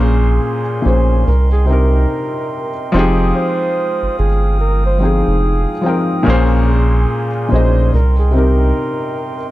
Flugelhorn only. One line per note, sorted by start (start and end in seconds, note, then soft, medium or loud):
0.02 0.81 G#4 medium
0.85 1.23 C5 medium
1.27 1.50 A#4 medium
1.53 1.67 G#4 medium
1.69 2.89 A#4 medium
3.36 4.14 C5 medium
4.19 4.62 G#4 medium
4.61 4.83 A#4 medium
4.86 5.00 C5 medium
5.02 6.23 G#4 medium
6.69 7.48 G#4 medium
7.52 7.96 C5 medium
7.94 8.16 A#4 medium
8.19 8.33 G#4 medium
8.35 9.51 A#4 medium